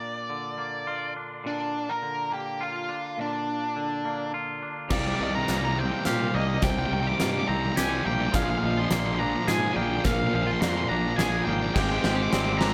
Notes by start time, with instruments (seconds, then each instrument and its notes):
Already playing: clean electric guitar A#2 A#3 D4 F4, lead electric guitar D5
0.30 clean electric guitar D3
0.58 clean electric guitar A#3
0.87 clean electric guitar F4
1.16 clean electric guitar D4
1.44 clean electric guitar A#2, lead electric guitar D4
1.89 lead electric guitar A#4
2.02 clean electric guitar D3
2.31 clean electric guitar A#3, lead electric guitar G4
2.61 clean electric guitar F4, lead electric guitar F4
2.89 clean electric guitar D4
3.18 clean electric guitar A#2, lead electric guitar D4
3.76 clean electric guitar D3
4.05 clean electric guitar A#3
4.34 clean electric guitar F4
4.63 clean electric guitar D4
4.89 fingered electric bass C2, pedal steel guitar C3 G3 A#3 D#4 G4, distorted electric guitar C3 G3, clean electric guitar C3, lead electric guitar D5, felt piano F5, kick, snare, crash
4.99 distorted electric guitar C3 G3, lead electric guitar D5
5.05 distorted electric guitar C3 G3, lead electric guitar D5
5.14 distorted electric guitar C3 G3, lead electric guitar D5
5.20 fingered electric bass C2, distorted electric guitar C3 G3, clean electric guitar D#3, lead electric guitar D5, felt piano D#5
5.29 distorted electric guitar C3 G3
5.35 distorted electric guitar C3 G3, lead electric guitar A#5
5.43 distorted electric guitar C3 G3, lead electric guitar A#5
5.48 fingered electric bass C2, distorted electric guitar C3, clean electric guitar A#3, felt piano D5, lead electric guitar A#5, snare, closed hi-hat
5.53 distorted electric guitar G3
5.58 distorted electric guitar C3, lead electric guitar A#5
5.62 distorted electric guitar G3, lead electric guitar A#5
5.67 distorted electric guitar C3 G3
5.72 distorted electric guitar C3, lead electric guitar A#5
5.76 distorted electric guitar G3, clean electric guitar C4, felt piano C5, lead electric guitar G5
5.83 distorted electric guitar C3 G3
5.91 distorted electric guitar C3 G3
5.98 distorted electric guitar C3 G3
6.05 fingered electric bass A#2, distorted electric guitar C3 G3, clean electric guitar G4, lead electric guitar F5, snare, closed hi-hat
6.14 distorted electric guitar C3 G3
6.21 distorted electric guitar C3 G3
6.30 distorted electric guitar C3 G3
6.34 fingered electric bass C2, distorted electric guitar C3, clean electric guitar A#3, felt piano D5, lead electric guitar D#5
6.39 distorted electric guitar G3
6.45 distorted electric guitar C3 G3
6.53 distorted electric guitar C3 G3
6.62 fingered electric bass C2, distorted electric guitar C3 G3, clean electric guitar C3, felt piano C5, lead electric guitar G5, kick, snare, closed hi-hat
6.70 distorted electric guitar C3 G3, lead electric guitar G5
6.78 distorted electric guitar C3 G3, lead electric guitar G5
6.86 distorted electric guitar C3 G3, lead electric guitar G5
6.91 fingered electric bass C2, distorted electric guitar C3 G3, clean electric guitar D#3, lead electric guitar G5
7.00 distorted electric guitar C3 G3, lead electric guitar G5
7.07 distorted electric guitar C3 G3, lead electric guitar D6
7.15 distorted electric guitar C3 G3, lead electric guitar D6
7.20 fingered electric bass G2, clean electric guitar A#3, felt piano D#5, lead electric guitar D6, snare, closed hi-hat
7.26 distorted electric guitar C3 G3
7.30 distorted electric guitar C3 G3, lead electric guitar D6
7.39 distorted electric guitar C3 G3, lead electric guitar D6
7.48 fingered electric bass C2, distorted electric guitar C3 G3, clean electric guitar C4, felt piano D#5, lead electric guitar A#5
7.57 distorted electric guitar C3 G3
7.65 distorted electric guitar C3 G3
7.71 distorted electric guitar C3 G3
7.76 fingered electric bass C2, distorted electric guitar C3, clean electric guitar G4, lead electric guitar G#5, snare, closed hi-hat
7.81 distorted electric guitar G3
7.88 distorted electric guitar C3 G3
7.96 distorted electric guitar C3 G3
8.03 fingered electric bass A#1, distorted electric guitar C3 G3, clean electric guitar A#3, lead electric guitar G5
8.11 distorted electric guitar C3 G3
8.19 distorted electric guitar C3 G3
8.28 distorted electric guitar C3 G3
8.32 fingered electric bass A#1, distorted electric guitar A#2 F3, clean electric guitar A#2, pedal steel guitar D3 G#3 F4 G#4, felt piano F5, lead electric guitar F5, kick, snare, closed hi-hat
8.41 distorted electric guitar A#2 F3, lead electric guitar F5
8.50 distorted electric guitar A#2 F3, lead electric guitar F5
8.57 distorted electric guitar A#2 F3, lead electric guitar F5
8.63 fingered electric bass A#1, distorted electric guitar A#2 F3, clean electric guitar F3, felt piano D#5, lead electric guitar F5
8.71 distorted electric guitar A#2 F3, lead electric guitar F5
8.77 distorted electric guitar A#2 F3, lead electric guitar C6
8.85 lead electric guitar C6
8.89 fingered electric bass A#1, distorted electric guitar A#2 F3, clean electric guitar A#3, felt piano D5, lead electric guitar C6, snare, closed hi-hat
8.95 distorted electric guitar A#2 F3
9.00 lead electric guitar C6
9.04 distorted electric guitar A#2 F3, lead electric guitar C6
9.11 distorted electric guitar A#2 F3, lead electric guitar C6
9.19 distorted electric guitar A#2 F3, clean electric guitar D4, felt piano C5, lead electric guitar A#5
9.26 distorted electric guitar A#2 F3
9.34 distorted electric guitar A#2 F3
9.42 distorted electric guitar A#2 F3
9.48 fingered electric bass G#2, distorted electric guitar A#2 F3, clean electric guitar G#4, lead electric guitar G#5, snare, closed hi-hat
9.58 distorted electric guitar A#2 F3
9.65 distorted electric guitar A#2 F3
9.73 fingered electric bass A#1, distorted electric guitar A#2 F3, clean electric guitar A#3, felt piano D5, lead electric guitar G5
9.80 distorted electric guitar A#2 F3
9.88 distorted electric guitar A#2 F3
9.96 distorted electric guitar A#2 F3
10.05 fingered electric bass A#1, clean electric guitar A#2, distorted electric guitar A#2 F3, felt piano A#4, lead electric guitar F5, kick, snare, closed hi-hat
10.12 distorted electric guitar A#2 F3, lead electric guitar F5
10.19 distorted electric guitar A#2 F3, lead electric guitar F5
10.27 distorted electric guitar A#2 F3, lead electric guitar F5
10.33 fingered electric bass A#1, distorted electric guitar A#2, clean electric guitar F3, lead electric guitar F5
10.38 distorted electric guitar F3
10.43 distorted electric guitar A#2 F3, lead electric guitar F5 C6
10.52 distorted electric guitar A#2 F3, lead electric guitar C6
10.60 fingered electric bass F2, distorted electric guitar A#2 F3, clean electric guitar A#3, felt piano D5, lead electric guitar C6, snare, closed hi-hat
10.66 distorted electric guitar A#2 F3, lead electric guitar C6
10.74 distorted electric guitar A#2 F3, lead electric guitar C6
10.83 distorted electric guitar A#2 F3, lead electric guitar C6
10.89 fingered electric bass A#1, distorted electric guitar A#2 F3, clean electric guitar D4, felt piano D5, lead electric guitar A#5
10.98 distorted electric guitar A#2 F3
11.07 distorted electric guitar A#2 F3
11.13 distorted electric guitar A#2 F3, lead electric guitar G#5
11.18 fingered electric bass A#1, distorted electric guitar A#2, clean electric guitar G#4, snare, closed hi-hat
11.23 distorted electric guitar F3
11.29 distorted electric guitar A#2 F3
11.38 distorted electric guitar A#2 F3
11.45 fingered electric bass G#1, distorted electric guitar A#2 F3, clean electric guitar A#3, lead electric guitar G5
11.53 distorted electric guitar A#2 F3
11.60 distorted electric guitar A#2 F3
11.68 distorted electric guitar A#2 F3
11.74 fingered electric bass G#1, distorted electric guitar G#3 C4, clean electric guitar G#3, overdriven electric guitar G4 C5, felt piano F5, lead electric guitar G5, kick, snare, crash
11.78 distorted electric guitar G#3, pedal steel guitar C4 G4, overdriven electric guitar G4, lead electric guitar G5
11.84 distorted electric guitar C4, overdriven electric guitar C5
11.89 distorted electric guitar G#3 C4, overdriven electric guitar G4 C5, lead electric guitar G5
11.97 distorted electric guitar G#3 C4, overdriven electric guitar G4, lead electric guitar G5
12.01 overdriven electric guitar C5, felt piano D#5, lead electric guitar G5, snare
12.05 fingered electric bass G#1, clean electric guitar G#3, distorted electric guitar G#3 C4, overdriven electric guitar G4 C5
12.12 distorted electric guitar G#3 C4, overdriven electric guitar G4 C5, lead electric guitar G5 D6
12.22 distorted electric guitar G#3 C4, overdriven electric guitar G4 C5, lead electric guitar D6
12.29 fingered electric bass G#1, distorted electric guitar G#3 C4, clean electric guitar C4, overdriven electric guitar G4 C5, felt piano D5, lead electric guitar D6, snare, closed hi-hat
12.37 distorted electric guitar G#3 C4, overdriven electric guitar G4 C5, lead electric guitar D6
12.44 distorted electric guitar G#3 C4, overdriven electric guitar G4 C5
12.49 distorted electric guitar G#3, overdriven electric guitar G4 C5, lead electric guitar D6
12.54 distorted electric guitar C4
12.58 distorted electric guitar G#3 C4, clean electric guitar D4, overdriven electric guitar G4 C5, felt piano C5, lead electric guitar A#5, snare
12.67 distorted electric guitar G#3 C4, overdriven electric guitar G4 C5